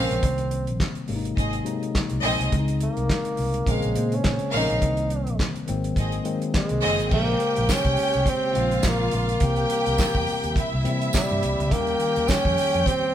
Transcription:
Already playing: C#3 F3 G#3 A#3 C4 C#4 A#4 F5
0.11 A#1, closed hi-hat
0.21 C2 C3 D#3 G3 A#3 C4, kick, closed hi-hat
0.38 closed hi-hat
0.51 closed hi-hat
0.67 A#1, closed hi-hat
0.80 kick, snare, clap
0.95 closed hi-hat
1.08 G#1 C3 F#3 G#3 A#3 C#4, open hi-hat
1.16 D#4
1.25 closed hi-hat
1.37 G#1 C4 G#4 D#5, kick, closed hi-hat
1.53 closed hi-hat
1.64 C3 F#3 G#3 A#3 D#4, closed hi-hat
1.83 closed hi-hat
1.95 kick, snare, clap
2.10 C2, closed hi-hat
2.23 A#1 C4 G#4 D#5, open hi-hat
2.40 C2, closed hi-hat
2.51 C#2 C#3 F3 G#3 C4 D4, kick, closed hi-hat
2.59 D#4
2.68 closed hi-hat
2.80 A#3, closed hi-hat
2.97 C2, closed hi-hat
3.09 kick, snare, clap
3.25 closed hi-hat
3.37 C2, open hi-hat
3.54 closed hi-hat
3.66 A#1 C#3 F3 G#3 A#3 C4 C#4 A#4 F5, kick, closed hi-hat
3.71 G#3
3.82 A#1, closed hi-hat
3.95 A#2 C#3 F3 G#3 A#3 C5, closed hi-hat
4.12 C#4, closed hi-hat
4.24 A#2, kick, snare, clap
4.39 closed hi-hat
4.53 A#1 C#4 A#4 F5, open hi-hat
4.57 D#4
4.70 A#1, closed hi-hat
4.80 C2 C3 D3 G3 A#3 C4, kick, closed hi-hat
4.87 D#3
4.97 closed hi-hat
5.10 closed hi-hat
5.27 A#1, closed hi-hat
5.39 kick, snare, clap
5.56 closed hi-hat
5.67 G#1 D#3 F#3 G#3 A#3 C4, closed hi-hat
5.84 closed hi-hat
5.96 G#1 C4 G#4 D#5, kick, closed hi-hat
6.12 closed hi-hat
6.24 D#3 F#3 G#3 A#3 C4, closed hi-hat
6.42 closed hi-hat
6.54 G#3, kick, snare, clap
6.69 C2, closed hi-hat
6.82 F#1 C4 G#4 D#5, open hi-hat
7.00 G#1, closed hi-hat
7.10 A#1 C#3 F3 G#3 A#3 G4 C5 G5, kick, crash
7.40 closed hi-hat
7.56 A#1, closed hi-hat
7.69 kick, snare, clap, tambourine
7.73 C#4
7.85 C2, kick, closed hi-hat
7.97 open hi-hat
8.14 C2, closed hi-hat
8.26 C4, kick, closed hi-hat
8.53 A#1 C#3 F3 G#3 A#3 C4 F4 F5, closed hi-hat
8.71 closed hi-hat
8.83 A#1, kick, snare, clap, tambourine
8.87 A#3
9.11 A#1, closed hi-hat
9.16 A#3
9.29 closed hi-hat
9.40 C2 C3 E3 G3 A#3 C4 G4 G5, kick, closed hi-hat
9.56 closed hi-hat
9.70 closed hi-hat
9.86 C2, closed hi-hat
9.98 kick, snare, clap, tambourine
10.15 E2, kick
10.27 open hi-hat
10.43 D#2, closed hi-hat
10.56 E4 E5, kick, closed hi-hat
10.74 C2
10.84 C3 E3 G3 A#3 C4, closed hi-hat
11.02 closed hi-hat
11.13 G3, kick, snare, clap, tambourine
11.29 G2, closed hi-hat
11.43 C2, closed hi-hat
11.60 C#2, closed hi-hat
11.70 D#2 D#3 F3 G3 A#3 C#4 G4 G5, kick, closed hi-hat
11.87 closed hi-hat
12.00 closed hi-hat
12.16 D#2, closed hi-hat
12.28 C#4, kick, snare, clap, tambourine
12.45 F2, kick
12.57 open hi-hat
12.74 F2, closed hi-hat
12.86 C4, kick, closed hi-hat

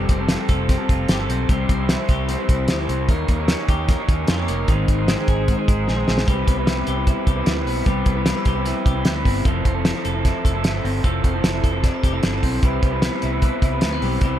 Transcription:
Already playing: F3 G3 C4 G4 A4
0.09 F1 C4, kick, closed hi-hat
0.19 C4 G4 A4
0.28 F4, snare, closed hi-hat
0.38 C4 G4 A4
0.49 F1 A4, kick, closed hi-hat
0.69 C4, kick, snare, closed hi-hat
0.78 C4 G4 A4
0.89 F1 F4, kick, closed hi-hat
1.08 G1 G4, snare, closed hi-hat
1.19 C4 G4 A4
1.29 B1 C4, closed hi-hat
1.49 C2 C3 E3 G3 C4 E4 C5, kick, closed hi-hat
1.69 C2 C4, kick, closed hi-hat
1.79 G3 C4 E4 C5
1.89 E4, snare, closed hi-hat
1.99 G3 C4 E4 C5
2.09 C2 G4, kick, closed hi-hat
2.29 C4, snare, closed hi-hat
2.39 G3 C4 E4 C5
2.49 C2 E4, kick, closed hi-hat
2.68 G4, snare, closed hi-hat
2.79 G3 C4 E4 C5
2.89 C2 C4, closed hi-hat
3.09 D#2 D#3 G3 A#3 D#4 G4 C#5, kick, closed hi-hat
3.28 D#2 A#3, kick, closed hi-hat
3.39 A#3 D#4 G4 C#5
3.48 C#4, snare, closed hi-hat
3.58 A#3 D#4 G4 C#5
3.69 D#2 G4, kick, closed hi-hat
3.89 A#3, kick, snare, closed hi-hat
3.98 A#3 D#4 G4 C#5
4.08 D#2 C#4, kick, closed hi-hat
4.28 F2 F4, snare, closed hi-hat
4.38 A#3 D#4 G4 C#5
4.48 F1 A#3, closed hi-hat
4.68 G#1 D#3 G#3 C4 D#4 G#4 C5, kick, closed hi-hat
4.88 G#1 G#3, kick, closed hi-hat
4.98 D#4 G#4 C5
5.08 C4, snare, closed hi-hat
5.17 D#4 G#4 C5
5.28 G#1 G#4, kick, closed hi-hat
5.48 G#3, kick, closed hi-hat
5.57 D#4 G#4 C5
5.68 G#1 C4, kick, closed hi-hat
5.87 A#1 G#4, snare
5.97 D#4 G#4 C5
6.08 A#1 G#3, snare
6.18 snare
6.26 C2 G3 C4 E4 G4 B4, kick, closed hi-hat
6.47 C2 B3, kick, closed hi-hat
6.57 G3 C4 E4 B4
6.67 E4, snare, closed hi-hat
6.76 C3 E3 G3 C4 E4 B4
6.87 C2 G4, closed hi-hat
6.96 C3 E3 G3 C4 E4 B4
7.07 E4, kick, closed hi-hat
7.27 C2 G4, kick, closed hi-hat
7.36 C3 E3 G3 C4 E4 B4
7.46 D2 E4, snare, closed hi-hat
7.56 G3 C4 E4 B4
7.66 B1 B3, open hi-hat
7.86 C2 G3 C4 E4 G4 B4, kick, closed hi-hat
8.06 C2 B3, kick, closed hi-hat
8.16 G3 C4 E4 B4
8.26 D4, snare, closed hi-hat
8.35 C3 E3 G3 C4 E4 B4
8.45 C2 G4, kick, closed hi-hat
8.55 C3 E3 G3 C4 E4 B4
8.65 E4, snare, closed hi-hat
8.86 C2 G4, kick, closed hi-hat
8.95 C3 E3 G3 C4 E4 B4
9.05 D2 E4, snare, closed hi-hat
9.14 G3 C4 E4 B4
9.25 G1 B3, kick, open hi-hat
9.45 F1 F3 A3 C4 E4 A4, kick, closed hi-hat
9.65 F1 C4, kick, closed hi-hat
9.74 C4 E4 A4
9.85 E4, snare, closed hi-hat
9.94 F3 A3 C4 E4 A4
10.05 F1 A4, closed hi-hat
10.14 F3 A3 C4 E4 A4
10.25 E4, kick, snare, closed hi-hat
10.45 F1 A4, kick, closed hi-hat
10.54 F3 A3 C4 E4 A4
10.64 G1 E4, snare, closed hi-hat
10.74 C4 E4 A4
10.84 G1 C4, open hi-hat
11.04 F1 F3 A3 C4 E4 A4, kick, closed hi-hat
11.24 F1 C4, kick, closed hi-hat
11.34 C4 E4 A4
11.44 F1 E4, snare, closed hi-hat
11.53 F3 A3 C4 E4 A4
11.64 F1 A4, kick, closed hi-hat
11.72 F3 A3 C4 E4 A4
11.83 D4, kick, snare, closed hi-hat
11.93 E4
12.03 F1 G4, kick, closed hi-hat
12.13 F3 A3 C4 E4 A4
12.23 G1 D4, snare, closed hi-hat
12.32 C4 E4 A4
12.43 B1 C4, kick, open hi-hat
12.62 C2 G3 C4 E4 B4, kick, closed hi-hat
12.83 C2 G3, kick, closed hi-hat
12.91 G3 C4 E4 B4
13.02 B3, snare, closed hi-hat
13.12 C3 E3 G3 C4 E4 B4
13.22 C2 E4, closed hi-hat
13.32 C3 E3 G3 C4 E4 B4
13.42 B3, kick, closed hi-hat
13.62 C2 E4, kick, closed hi-hat
13.72 C3 E3 G3 C4 E4 B4
13.81 D2 A3, snare, closed hi-hat
13.91 G3 B3 C4 E4 B4
14.02 B1 G3, open hi-hat
14.21 C2 G3 C4 E4 B4, kick, closed hi-hat

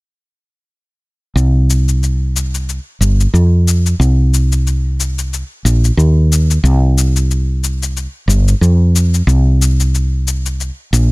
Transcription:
1.36 C2, cabasa
1.70 cabasa
1.89 cabasa
2.03 cabasa
2.36 cabasa
2.55 cabasa
2.69 cabasa
3.01 G1, cabasa
3.20 cabasa
3.34 F2, cabasa
3.68 cabasa
3.86 cabasa
4.00 C2, cabasa
4.34 cabasa
4.52 cabasa
4.67 cabasa
5.00 cabasa
5.19 cabasa
5.34 cabasa
5.65 A#1, cabasa
5.84 cabasa
5.97 D#2, cabasa
6.32 cabasa
6.51 cabasa
6.64 C2, cabasa
6.98 cabasa
7.16 cabasa
7.31 cabasa
7.64 cabasa
7.83 cabasa
7.97 cabasa
8.28 G1, cabasa
8.48 cabasa
8.61 F2, cabasa
8.96 cabasa
9.14 cabasa
9.27 C2, cabasa
9.62 cabasa
9.80 cabasa
9.95 cabasa
10.28 cabasa
10.46 cabasa
10.60 cabasa
10.93 A#1, cabasa

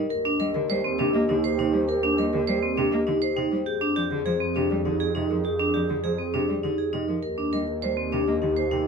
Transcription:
0.10 D#2 G4 A#4
0.25 D4
0.39 G3 A#4 D#5
0.54 D3 A#4
0.68 G3 C5 D5
0.84 C4
0.98 C3 D4 G4
1.13 A#3 D#5
1.28 D3 D#4 G4
1.44 C5
1.58 C3 D#4 G5
1.73 G3 C5
1.88 A#4
2.03 D4
2.18 G3 A#4 D#5
2.33 D3 A#4
2.47 G3 C5 D5
2.62 C4
2.77 C3 D4 G4
2.92 A#3 D#5
3.07 D3 D#4 G4
3.22 C5
3.36 C3 D#4 G5
3.51 G3 C5
3.66 F2 G4 G#4
3.81 D4
3.95 F3 G4 D5
4.10 D3 G#4
4.25 F3 G#4 C5
4.41 C4
4.54 C3 D4 G4
4.69 G3 D5
4.85 D3 D#4 G4
5.00 G#4
5.14 C3 D#4 D#5
5.29 F3 A#4
5.44 G4 G#4
5.59 D4
5.73 F3 G4 D5
5.89 D3 G#4
6.04 F3 G#4 C5
6.18 C4
6.33 C3 D4 G4
6.48 G3 D5
6.63 D3 D#4 G4
6.78 G#4
6.93 C3 D#4 D#5
7.08 F3 A#4
7.23 D#2 G4 A#4
7.38 D4
7.53 G3 A#4 D#5
7.67 A#4
7.82 G3 C5 D5
7.97 C4
8.12 C3 D4 G4
8.27 A#3 D#5
8.42 D3 D#4 G4
8.57 C5
8.71 C3 D#4 G5

